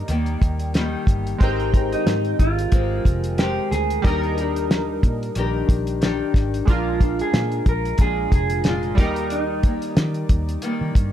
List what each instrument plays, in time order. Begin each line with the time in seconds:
Already playing: synth keys G3 D#4 A#4 D5, nylon-string guitar A#3, clean electric guitar D#4
0.08 fingered electric bass D#2, nylon-string guitar D#3 G3 A#3, closed hi-hat
0.26 closed hi-hat
0.42 fingered electric bass D#2, kick, closed hi-hat
0.59 closed hi-hat
0.74 nylon-string guitar D#3 G3 A#3, snare, closed hi-hat
1.07 fingered electric bass G1, kick, closed hi-hat
1.27 closed hi-hat
1.38 fingered electric bass G#1, synth keys G#3 C4 G5, nylon-string guitar G#3 C4, clean electric guitar D#4, kick, closed hi-hat
1.43 nylon-string guitar G4 A#4, synth keys A#4
1.60 closed hi-hat
1.73 nylon-string guitar C4 G4 A#4, kick, closed hi-hat
1.92 clean electric guitar D#4, closed hi-hat
2.06 fingered electric bass G#2, snare, closed hi-hat
2.25 closed hi-hat
2.39 fingered electric bass G#1, clean electric guitar F4, kick, closed hi-hat
2.59 closed hi-hat
2.72 fingered electric bass G#1, nylon-string guitar G#3 C4 G4 A#4, kick, closed hi-hat
3.05 fingered electric bass F1, kick, closed hi-hat
3.24 closed hi-hat
3.38 nylon-string guitar G#3 C4 A#4, clean electric guitar G4, snare, closed hi-hat
3.71 fingered electric bass D2, clean electric guitar G#4, snare, closed hi-hat
3.90 closed hi-hat
4.02 fingered electric bass D#2, nylon-string guitar D#3 D4, synth keys G3 D4 D#4, clean electric guitar A#4, kick, closed hi-hat
4.06 nylon-string guitar G4 A#4, synth keys A#4
4.23 closed hi-hat
4.37 nylon-string guitar D4 G4 A#4, closed hi-hat
4.56 closed hi-hat
4.71 snare, closed hi-hat
5.03 fingered electric bass A#2, kick, closed hi-hat
5.23 closed hi-hat
5.35 fingered electric bass A#1, nylon-string guitar D#3 D4 G4 A#4, closed hi-hat
5.69 fingered electric bass A#1, kick, closed hi-hat
5.87 closed hi-hat
6.01 nylon-string guitar D#3 D4 G4 A#4, snare, closed hi-hat
6.34 fingered electric bass G#1, kick, snare, closed hi-hat
6.54 closed hi-hat
6.65 fingered electric bass A#1, nylon-string guitar A#2 G#3, synth keys G#3 D4 F4, kick, closed hi-hat
6.70 nylon-string guitar D4 F4, clean electric guitar F4, synth keys A#4
7.01 nylon-string guitar G#3 D4 F4, kick, closed hi-hat
7.19 clean electric guitar G#4, closed hi-hat
7.33 fingered electric bass A#2, snare, closed hi-hat
7.52 closed hi-hat
7.66 fingered electric bass A#1, clean electric guitar A#4, kick, closed hi-hat
7.85 closed hi-hat
7.98 fingered electric bass A#1, nylon-string guitar A#2 G#3 D4, clean electric guitar G#4, kick, closed hi-hat
8.02 nylon-string guitar F4
8.32 fingered electric bass F1, clean electric guitar G#4, kick, closed hi-hat
8.50 closed hi-hat
8.64 nylon-string guitar A#2 G#3 D4, snare, closed hi-hat
8.68 nylon-string guitar F4
8.83 closed hi-hat
8.95 fingered electric bass D#2, synth keys G3 D#4 D5, nylon-string guitar G3 A#3, kick, closed hi-hat
8.99 nylon-string guitar D#3, clean electric guitar G4, synth keys A#4
9.16 closed hi-hat
9.30 clean electric guitar D#4, closed hi-hat
9.63 nylon-string guitar G3 A#3, kick, closed hi-hat
9.82 closed hi-hat
9.97 fingered electric bass D#3, snare, closed hi-hat
10.14 closed hi-hat
10.29 fingered electric bass D#2, kick, closed hi-hat
10.49 closed hi-hat
10.62 nylon-string guitar D#3 G3 A#3, closed hi-hat
10.81 fingered electric bass D#3
10.95 fingered electric bass G2, kick, closed hi-hat